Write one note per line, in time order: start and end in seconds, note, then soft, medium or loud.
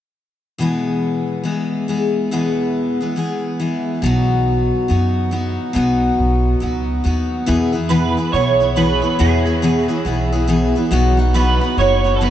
0.58 1.45 E2 medium
0.58 1.45 B2 medium
0.58 1.42 E3 medium
0.58 1.44 G#3 medium
0.58 1.45 B3 medium
0.58 1.45 G#4 medium
1.44 1.87 E3 medium
1.44 1.88 G#3 medium
1.44 1.89 B3 medium
1.44 1.88 G#4 medium
1.88 2.31 E3 soft
1.88 2.31 G#3 medium
1.88 2.32 B3 medium
1.88 2.32 G#4 medium
2.31 3.01 E2 medium
2.31 3.01 B2 medium
2.31 3.01 E3 medium
2.31 3.01 G#3 medium
2.31 3.01 B3 medium
2.31 2.99 G#4 medium
3.00 3.15 E3 soft
3.00 3.16 G#3 soft
3.00 3.17 B3 soft
3.00 3.17 G#4 soft
3.16 3.58 E3 medium
3.16 3.59 G#3 medium
3.16 3.61 B3 medium
3.16 3.61 G#4 medium
3.59 4.03 E3 medium
3.59 4.03 G#3 medium
3.59 4.04 B3 medium
3.59 4.04 G#4 medium
4.02 4.69 B1 medium
4.02 4.89 B2 medium
4.02 4.87 F#3 medium
4.02 4.89 B3 medium
4.02 4.89 D#4 medium
4.02 4.90 F#4 medium
4.88 5.56 F#2 medium
4.88 5.30 F#3 medium
4.88 5.32 B3 medium
4.88 5.32 D#4 medium
4.88 5.32 F#4 medium
5.31 5.73 F#3 medium
5.31 5.75 B3 medium
5.31 5.75 D#4 medium
5.31 5.76 F#4 medium
5.73 6.08 B1 medium
5.73 6.60 B2 medium
5.73 6.59 F#3 medium
5.73 6.60 B3 medium
5.73 6.61 D#4 medium
5.78 6.62 F#4 medium
6.18 6.55 B1 medium
6.60 6.98 C#2 medium
6.60 7.03 F#3 medium
6.60 7.03 B3 medium
6.60 7.05 D#4 medium
6.60 7.05 F#4 medium
7.04 7.41 D#2 medium
7.04 7.47 F#3 medium
7.04 7.46 B3 medium
7.04 7.47 D#4 medium
7.04 7.48 F#4 medium
7.46 7.73 E2 medium
7.46 8.14 E2 medium
7.46 7.74 B2 medium
7.46 7.74 E3 medium
7.46 7.73 B3 medium
7.46 7.72 E4 medium
7.46 7.71 G#4 medium
7.72 7.89 E3 soft
7.72 7.89 B3 soft
7.72 7.90 E4 soft
7.72 7.90 G#4 medium
7.89 8.16 E2 medium
7.89 8.17 B2 medium
7.89 8.17 E3 medium
7.89 8.17 B3 medium
7.89 8.17 E4 medium
7.89 8.16 G#4 medium
7.89 8.32 B4 medium
8.17 8.32 E3 soft
8.17 8.33 B3 soft
8.17 8.34 E4 soft
8.17 8.34 G#4 soft
8.32 8.99 B1 medium
8.32 8.60 E3 soft
8.32 8.61 B3 medium
8.32 8.60 E4 medium
8.32 8.59 G#4 medium
8.32 8.76 C#5 medium
8.60 8.75 E3 soft
8.60 8.76 B3 soft
8.60 8.76 E4 soft
8.60 8.77 G#4 soft
8.76 9.03 E2 medium
8.76 9.03 B2 medium
8.76 9.03 E3 medium
8.76 9.03 B3 medium
8.76 9.02 E4 medium
8.76 9.01 G#4 medium
8.76 9.21 B4 medium
9.02 9.18 E3 soft
9.02 9.18 B3 soft
9.02 9.19 E4 soft
9.02 9.19 G#4 soft
9.19 9.46 E2 medium
9.19 9.86 E2 medium
9.19 9.46 B2 medium
9.19 9.46 E3 medium
9.19 9.46 B3 medium
9.19 9.46 E4 medium
9.19 10.02 G#4 medium
9.19 9.44 G#4 medium
9.46 9.62 E3 soft
9.46 9.62 B3 soft
9.46 9.63 E4 soft
9.46 9.62 G#4 soft
9.62 9.89 E2 medium
9.62 9.89 B2 medium
9.62 9.90 E3 medium
9.62 9.89 B3 medium
9.62 9.88 E4 medium
9.62 9.87 G#4 medium
9.88 10.04 E3 soft
9.88 10.05 B3 soft
9.88 10.06 E4 soft
9.88 10.05 G#4 medium
10.05 10.71 B1 medium
10.05 10.32 E3 medium
10.05 10.32 B3 medium
10.05 10.32 E4 medium
10.05 10.31 G#4 medium
10.32 10.48 E3 soft
10.32 10.48 B3 medium
10.32 10.48 E4 medium
10.32 10.49 G#4 medium
10.48 10.75 E2 medium
10.48 10.75 B2 medium
10.48 10.75 E3 medium
10.48 10.75 B3 medium
10.48 10.75 E4 medium
10.48 10.74 G#4 medium
10.75 10.91 E3 soft
10.75 10.91 B3 medium
10.75 10.92 E4 medium
10.75 10.92 G#4 medium
10.91 11.57 B1 medium
10.91 11.18 B2 medium
10.91 11.18 F#3 medium
10.91 11.18 B3 medium
10.91 11.17 D#4 loud
10.91 11.16 F#4 medium
11.17 11.34 B3 soft
11.17 11.34 D#4 soft
11.17 11.34 F#4 medium
11.34 11.61 B2 medium
11.34 11.61 F#3 medium
11.34 11.62 B3 medium
11.34 11.62 D#4 medium
11.34 11.60 F#4 medium
11.34 11.78 B4 medium
11.61 11.78 B3 soft
11.61 11.79 D#4 soft
11.61 11.78 F#4 soft
11.77 12.30 F#1 medium
11.77 12.04 F#3 medium
11.77 12.05 B3 medium
11.77 12.05 D#4 soft
11.77 12.03 F#4 medium
11.77 12.15 C#5 medium
12.04 12.20 B3 soft
12.04 12.21 D#4 soft
12.04 12.21 F#4 soft
12.15 12.21 A4 medium
12.21 12.30 B2 medium
12.21 12.30 F#3 medium
12.21 12.30 B3 medium
12.21 12.30 D#4 medium
12.21 12.30 F#4 medium
12.21 12.30 B4 medium